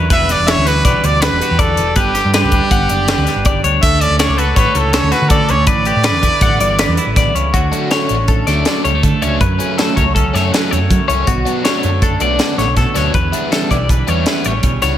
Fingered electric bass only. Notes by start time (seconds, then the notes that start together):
0.11 E1
0.39 E1
0.57 D2
0.85 B1
1.03 D2
1.31 E1
1.51 E2
1.78 E1
1.96 G1
2.25 G2
2.44 D2
2.71 G1
2.90 F#1
3.18 D2
3.36 G1
3.64 D2
3.83 D2
4.10 D2
4.28 C#2
4.57 A1
4.75 C#2
5.03 D2
5.22 D3
5.49 D2
5.67 A1
5.96 A2
6.14 E2
6.41 A1
6.60 G1
6.88 E2
7.06 A1
7.35 C#2
7.54 D2
8.10 A1
8.47 D2
8.85 C#2
8.94 D2
9.04 D3
9.22 C#2
9.41 F#2
9.97 C#2
10.34 F#2
10.72 E2
10.81 F#2
10.91 F#3
11.09 C2
11.27 B1
11.84 F#2
12.21 B1
12.58 A1
12.67 B1
12.77 B2
12.95 D2
13.14 E2
13.71 B1
14.08 E2
14.45 A1
14.63 B1
14.83 C#2